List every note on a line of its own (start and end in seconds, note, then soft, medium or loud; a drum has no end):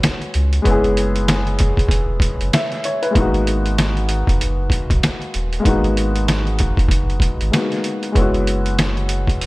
0.00 0.60 G#3 medium
0.00 0.61 B3 medium
0.00 0.62 C#4 medium
0.00 0.63 E4 medium
0.00 0.64 F#4 medium
0.00 snare loud
0.00 closed hi-hat medium
0.04 snare medium
0.22 closed hi-hat soft
0.34 0.60 C#2 medium
0.34 closed hi-hat medium
0.53 closed hi-hat medium
0.62 1.74 F#1 loud
0.62 3.09 G#3 medium
0.62 3.11 B3 medium
0.62 kick loud
0.62 closed hi-hat medium
0.67 3.12 C#4 medium
0.67 3.13 E4 medium
0.71 3.14 G#4 medium
0.84 closed hi-hat soft
0.97 closed hi-hat medium
1.16 closed hi-hat medium
1.28 snare loud
1.28 snare medium
1.28 closed hi-hat medium
1.47 closed hi-hat soft
1.59 kick medium
1.59 closed hi-hat medium
1.77 2.29 E1 medium
1.77 kick medium
1.77 closed hi-hat soft
1.89 kick medium
1.89 closed hi-hat medium
2.20 kick medium
2.20 closed hi-hat medium
2.41 2.51 F#1 medium
2.41 closed hi-hat soft
2.53 2.83 E5 medium
2.53 snare loud
2.53 snare medium
2.53 closed hi-hat medium
2.72 snare soft
2.72 closed hi-hat soft
2.84 3.03 C#5 medium
2.84 closed hi-hat medium
3.02 3.32 B4 medium
3.02 closed hi-hat medium
3.11 5.58 G#3 medium
3.11 5.60 A#3 medium
3.15 4.24 G#1 loud
3.15 5.61 B3 medium
3.15 5.62 D#4 medium
3.15 kick loud
3.15 closed hi-hat medium
3.20 5.64 F#4 medium
3.34 closed hi-hat soft
3.47 closed hi-hat medium
3.66 closed hi-hat medium
3.78 snare loud
3.78 snare medium
3.78 closed hi-hat medium
3.97 closed hi-hat soft
4.09 closed hi-hat medium
4.27 4.79 F#1 medium
4.27 kick medium
4.27 closed hi-hat soft
4.41 closed hi-hat medium
4.70 kick medium
4.70 closed hi-hat medium
4.90 5.01 B1 medium
4.90 kick loud
4.90 closed hi-hat medium
5.03 snare loud
5.03 snare medium
5.03 closed hi-hat medium
5.22 closed hi-hat soft
5.34 5.60 D#1 medium
5.34 closed hi-hat medium
5.53 closed hi-hat medium
5.60 7.46 G#3 medium
5.60 7.47 A#3 medium
5.64 6.74 G#1 loud
5.64 7.49 B3 medium
5.64 7.50 D#4 medium
5.64 kick loud
5.64 closed hi-hat medium
5.69 7.51 F#4 medium
5.84 closed hi-hat soft
5.97 closed hi-hat medium
6.16 closed hi-hat medium
6.28 snare loud
6.28 snare medium
6.28 closed hi-hat medium
6.47 closed hi-hat soft
6.59 kick medium
6.59 closed hi-hat medium
6.77 7.29 F#1 medium
6.77 kick medium
6.77 closed hi-hat soft
6.89 kick medium
6.89 closed hi-hat medium
7.10 closed hi-hat soft
7.20 kick medium
7.20 closed hi-hat medium
7.41 7.51 G#1 medium
7.41 closed hi-hat medium
7.51 8.11 G#3 medium
7.51 8.15 A#3 medium
7.51 8.13 B3 medium
7.51 8.16 D#4 medium
7.51 snare loud
7.51 snare medium
7.51 closed hi-hat medium
7.55 8.17 F#4 medium
7.72 snare soft
7.72 closed hi-hat soft
7.84 closed hi-hat medium
8.03 closed hi-hat medium
8.12 9.29 F#1 loud
8.12 9.46 G#3 medium
8.12 9.46 B3 medium
8.12 kick loud
8.12 closed hi-hat medium
8.17 9.46 C#4 medium
8.17 9.46 E4 medium
8.21 9.46 F#4 medium
8.34 closed hi-hat soft
8.47 closed hi-hat medium
8.66 closed hi-hat medium
8.79 snare loud
8.79 snare medium
8.79 closed hi-hat medium
8.97 closed hi-hat soft
9.09 closed hi-hat medium
9.27 9.46 E1 medium
9.27 kick medium
9.27 closed hi-hat soft
9.41 closed hi-hat medium